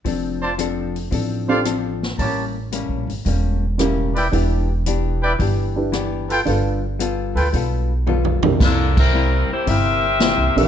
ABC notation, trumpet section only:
X:1
M:4/4
L:1/8
Q:"Swing" 1/4=112
K:Cmix
V:1 name="Trumpet section"
z [Fcda] z3 [Fcdf] z2 | [GB^ca] z6 [E=Bdg] | z3 [E=Bdg] z3 [FABg] | z3 [FA=Bg] z4 |
z8 |]